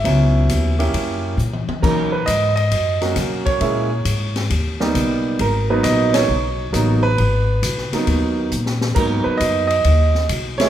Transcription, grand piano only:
X:1
M:4/4
L:1/8
Q:"Swing" 1/4=135
K:G#m
V:1 name="Grand piano"
e3 z4 z | A B d d3 z c- | c3 z4 z | A B d c3 z B- |
B3 z4 z | A B d d3 z c |]
V:2 name="Grand piano"
[F,B,CE]3 [A,CE=G]3 z2 | [F,A,CD] z4 [F,A,CF]3 | [G,A,CE] z4 [=G,A,B,D]3 | z [F,A,B,D]3 z2 [F,A,B,D] z |
z3 [F,A,B,D]3 z2 | [F,A,B,D]3 z4 [G,=A,CE] |]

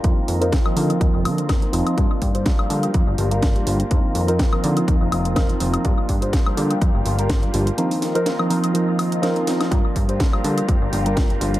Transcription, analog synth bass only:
X:1
M:4/4
L:1/16
Q:"Swing 16ths" 1/4=124
K:Gm
V:1 name="Analog synth bass" clef=bass
F,, z F,,2 z2 D, z E,, F,,, D,2 F,, z F,,, z | G,, z G,,2 z2 D, z F,, G,,, G,,,3 G,, G,,, z | F,, z F,,2 z2 D, z E,, F,,, F,,,3 F,, F,,, z | G,, z G,,2 z2 D, z F,, G,,, G,,,3 G,, G,,, z |
z16 | G,, z G,,2 z2 D, z F,, G,,, G,,,3 G,, G,,, z |]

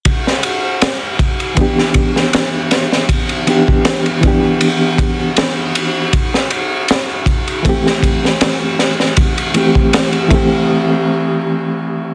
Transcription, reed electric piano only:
X:1
M:4/4
L:1/8
Q:"Swing 16ths" 1/4=79
K:Em
V:1 name="Reed electric piano"
z4 [E,B,DG]4- | [E,B,DG] [E,B,DG]2 [E,B,DG]4- [E,B,DG] | z4 [E,A,CG]4- | [E,A,CG] [E,A,CG]2 [E,A,CG]4- [E,A,CG] |]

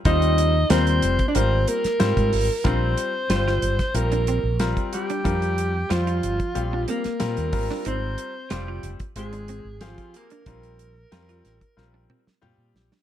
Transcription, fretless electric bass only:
X:1
M:4/4
L:1/16
Q:1/4=92
K:Bbmix
V:1 name="Fretless electric bass" clef=bass
E,,4 E,,2 F,,, z A,,,2 z2 A,, A,, A,,, z | B,,,2 z2 G,,,2 G,,, z B,,,3 B,,,2 z3 | F,,4 F,,2 G,,, z B,,,2 z2 B,, E,, A,,, z | A,,,2 z2 F,,,2 F,,, z A,,,3 A,,,2 z3 |
B,,,4 F,,2 =A,,, z B,,,2 z2 B,, B,, B,,, z |]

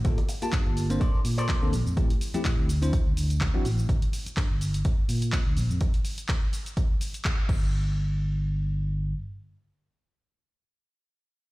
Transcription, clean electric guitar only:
X:1
M:4/4
L:1/16
Q:"Swing 16ths" 1/4=125
K:Dm
V:1 name="Clean electric guitar"
z8 [ABcd]2 z [ABcd]3 z2 | z16 | z16 | z16 |
z16 | z16 |]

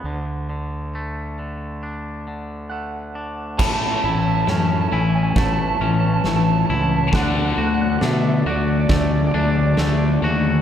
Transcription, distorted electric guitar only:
X:1
M:4/4
L:1/8
Q:1/4=68
K:A
V:1 name="Distorted electric guitar" clef=bass
z8 | [A,,E,A,] [A,,E,] [A,,E,] [A,,E,] [A,,E,] [A,,E,] [A,,E,] [A,,E,] | [D,A,D] [D,A,] [D,A,] [D,A,] [D,A,] [D,A,] [D,A,] [D,A,] |]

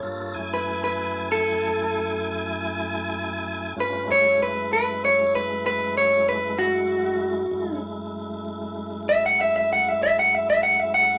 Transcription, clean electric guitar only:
X:1
M:12/8
L:1/16
Q:3/8=64
K:F#m
V:1 name="Clean electric guitar"
c3 B2 B3 A8 z8 | B2 c2 B2 B2 c2 B2 B2 c2 B2 F6- | F2 z8 e f e e f e e f e e f e f2 |]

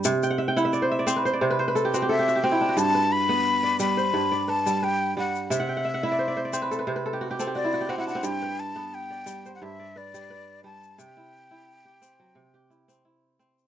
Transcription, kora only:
X:1
M:4/4
L:1/16
Q:"Swing 16ths" 1/4=88
K:Clyd
V:1 name="Kora"
z g/2 f/2 e/2 g/2 f/2 e/2 d/2 c/2 e/2 d/2 c/2 B/2 c/2 d/2 c/2 B/2 c/2 B/2 A/2 G/2 F/2 G/2 A/2 G/2 F/2 G/2 F/2 E/2 D/2 F/2- | F/2 z/2 B3 z d2 c2 d B2 B3 z | e/2 f/2 g/2 f/2 e/2 f/2 e/2 d/2 c/2 d/2 c/2 d/2 c/2 B/2 A/2 B/2 c/2 B/2 A/2 G/2 F/2 G/2 A/2 G/2 F/2 E/2 F/2 G/2 F/2 E/2 D/2 C/2- | C/2 z/2 B3 z d2 c2 d B2 B3 z |
z E3 z G2 F,2 G E2 E3 z |]
V:2 name="Kora" clef=bass
C,2 z E2 z C2 C,2 z C2 z C2 | G,,2 z B,2 z G,2 G,,2 z G,2 z G,2 | C,2 z E2 z C2 C,2 z C2 z C2 | G,,2 z B,2 z G,2 G,,2 z G,2 z G,2 |
C,2 z E2 z C2 C,2 z C2 z C2 |]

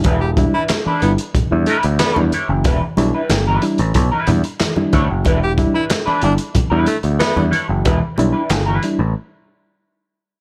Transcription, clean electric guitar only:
X:1
M:4/4
L:1/16
Q:1/4=92
K:Edor
V:1 name="Clean electric guitar"
[G,DEB] z2 [G,DEB] z [G,DEB] z4 [G,DEB] z [G,DEB] z [G,DEc] z | [G,DEB] z2 [G,DEB] z [G,DEB] z3 [G,DEB] z4 [G,DEc] z | [G,DEB] z2 [G,DEB] z [G,DEB] z3 [G,DEB] z2 [G,DEB] z [G,DEc] z | [G,DEB] z2 [G,DEB] z [G,DEB] z8 z2 |]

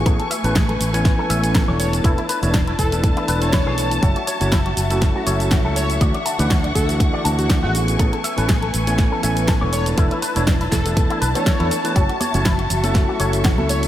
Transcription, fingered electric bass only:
X:1
M:4/4
L:1/16
Q:"Swing 16ths" 1/4=121
K:Emix
V:1 name="Fingered electric bass" clef=bass
A,,, z2 A,,,3 A,,,3 z A,,,3 E,,,3 | E,,, z2 E,,,3 E,,,3 z E,,,3 B,,,3 | F,,, z2 F,,,3 F,,,3 z F,,,3 C,,3 | D,, z2 D,,3 D,,3 z D,,3 A,,,3 |
A,,, z2 A,,,3 A,,,3 z A,,,3 E,,,3 | E,,, z2 E,,,3 E,,,3 z B,,, z2 E,, z2 | F,,, z2 F,,,3 F,,,3 z F,,,3 C,,3 |]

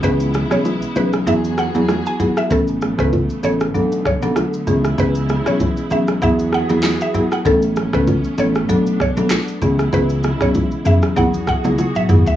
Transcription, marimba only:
X:1
M:4/4
L:1/16
Q:"Swing 16ths" 1/4=97
K:C#phr
V:1 name="Marimba"
[E,B,CG] z2 [E,B,CG] z2 [E,B,CG] z [F,B,EG]3 [F,B,EG]3 [F,B,EG]2 | [E,B,CA] z2 [E,B,CA] z2 [E,B,CA] z [F,B,DA]3 [F,B,DA] z2 [E,B,CG] z | [E,B,CG] z2 [E,B,CG] z2 [E,B,CG] z [F,B,EG]3 [F,B,EG] z2 [F,B,EG] z | [E,B,CA] z2 [E,B,CA] z2 [E,B,CA] z [F,B,DA]3 [F,B,DA] z2 [E,B,CG] z |
[E,B,CG] z2 [E,B,CG] z2 [E,B,CG] z [F,B,EG]3 [F,B,EG] z2 [F,B,EG] z |]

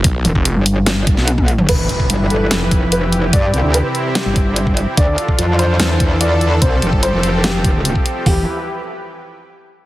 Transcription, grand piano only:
X:1
M:4/4
L:1/8
Q:1/4=146
K:Ephr
V:1 name="Grand piano"
z8 | B3 A3 B z | d z B z G4 | d3 c3 d z |
c z c z G4 | G z6 z |]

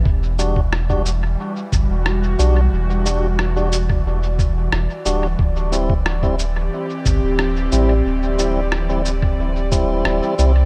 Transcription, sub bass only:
X:1
M:4/4
L:1/16
Q:1/4=90
K:Em
V:1 name="Sub bass" clef=bass
E,,,8 z2 G,,, E,,,3 B,,,2 | E,,,8 E,,,4 E,,, z D,,,2 | D,,,8 z2 G,,, D,,,3 A,,,2 | D,,,8 D,,,4 D,,, z C,,2 |]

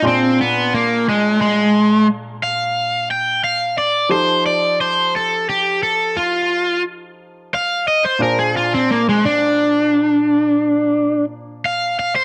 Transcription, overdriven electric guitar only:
X:1
M:12/8
L:1/16
Q:3/8=59
K:Bb
V:1 name="Overdriven electric guitar"
C2 =B,2 _B,2 _A,2 A,4 z2 f4 g2 f2 d2 | c2 d2 c2 A2 G2 A2 F4 z4 f2 e c | B _A F C B, _A, D12 z2 f2 f c |]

